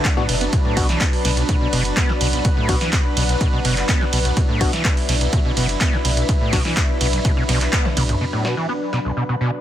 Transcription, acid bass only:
0.05 0.09 D4 medium
0.17 0.27 A2 medium
0.29 0.36 B2 medium
0.41 0.45 B3 medium
0.53 0.57 B2 loud
0.65 0.78 A2 medium
0.77 0.87 B2 loud
0.89 0.99 E3 medium
1.01 1.05 B3 medium
1.25 1.32 B2 medium
1.37 1.44 B1 medium
1.49 1.56 B2 medium
1.61 1.68 B2 medium
1.73 1.83 B2 loud
1.97 2.11 B3 medium
2.09 2.13 B2 medium
2.21 2.28 B2 medium
2.33 2.40 B1 medium
2.45 2.49 B2 loud
2.57 2.70 A2 medium
2.69 2.79 B2 loud
2.81 2.91 E3 medium
2.93 2.97 B3 medium
3.17 3.24 B2 medium
3.29 3.36 B1 medium
3.41 3.48 B2 medium
3.53 3.60 B2 medium
3.65 3.75 B2 loud
3.89 4.03 B3 medium
4.01 4.05 B2 medium
4.13 4.20 B2 medium
4.25 4.32 B1 medium
4.37 4.41 B2 loud
4.49 4.62 A2 medium
4.61 4.71 B2 loud
4.73 4.83 E3 medium
4.85 4.89 B3 medium
5.09 5.16 B2 medium
5.21 5.28 B1 medium
5.33 5.40 B2 medium
5.45 5.52 B2 medium
5.57 5.67 B2 loud
5.81 5.95 B3 medium
5.93 5.97 B2 medium
6.05 6.12 B2 medium
6.17 6.24 B1 medium
6.29 6.33 B2 loud
6.41 6.54 A2 medium
6.53 6.63 B2 loud
6.65 6.75 E3 medium
6.77 6.81 B3 medium
7.01 7.08 B2 medium
7.13 7.20 B1 medium
7.25 7.32 B2 medium
7.37 7.44 B2 medium
7.49 7.59 B2 loud
7.73 7.87 B3 medium
7.85 7.89 B2 medium
7.97 8.04 B2 medium
8.09 8.16 B1 medium
8.21 8.25 B2 medium
8.33 8.46 A2 medium
8.45 8.55 B2 medium
8.57 8.67 E3 medium
8.69 8.73 B3 medium
8.93 9.00 B2 medium
9.05 9.12 B1 medium
9.17 9.24 B2 medium
9.29 9.36 B2 medium
9.41 9.51 B2 loud

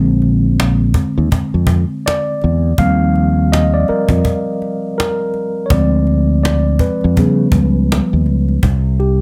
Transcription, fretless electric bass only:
0.00 0.91 A#1 medium
0.95 muted fretless electric bass stroke soft
1.18 1.29 D#2 medium
1.33 muted fretless electric bass stroke soft
1.54 1.83 F2 medium
2.44 2.72 E2 medium
2.79 3.84 D#2 medium
3.90 muted fretless electric bass stroke soft
4.10 4.21 F2 medium
5.71 6.76 D2 medium
6.81 muted fretless electric bass stroke soft
7.04 7.15 F2 medium
7.18 7.47 C#3 medium
7.53 8.00 C#2 medium
8.13 8.28 D#2 medium
8.28 8.57 C#2 medium
8.64 9.21 C2 medium

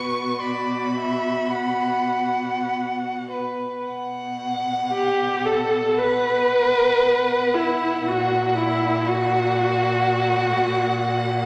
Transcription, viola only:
0.00 3.32 F#4 soft
4.94 5.47 G4 medium
5.46 6.00 A4 medium
5.99 7.56 B4 medium
7.54 8.09 E4 medium
8.07 8.57 F#4 medium
8.58 9.09 E4 medium
9.08 11.46 F#4 medium

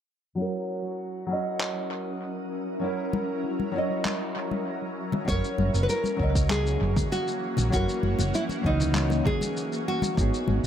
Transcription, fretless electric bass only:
5.28 5.40 F#1 medium
5.58 5.71 F#1 medium
5.74 5.86 F#1 medium
6.20 6.76 C#2 medium
6.81 6.93 F#1 medium
7.58 7.70 A#1 medium
7.73 7.85 F#1 medium
8.03 8.15 F#1 medium
8.19 8.30 F#1 medium
8.64 9.20 C#2 medium
10.18 10.30 G#1 medium
10.48 10.60 G#1 medium
10.63 10.67 G#1 medium

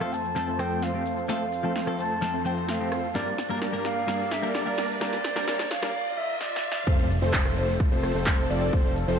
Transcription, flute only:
0.00 0.14 F5 loud
0.13 0.61 A5 loud
0.60 0.84 G5 loud
0.83 1.29 F5 loud
1.29 1.95 F5 loud
1.99 2.42 A5 loud
2.46 2.52 G5 medium
2.69 3.17 F5 loud
3.15 3.58 D5 medium
3.85 4.33 F5 loud
4.32 4.54 E5 loud
4.55 4.98 D5 loud
5.01 5.72 D5 loud
5.71 6.19 F5 loud
6.17 6.40 E5 loud
6.41 6.84 D5 medium

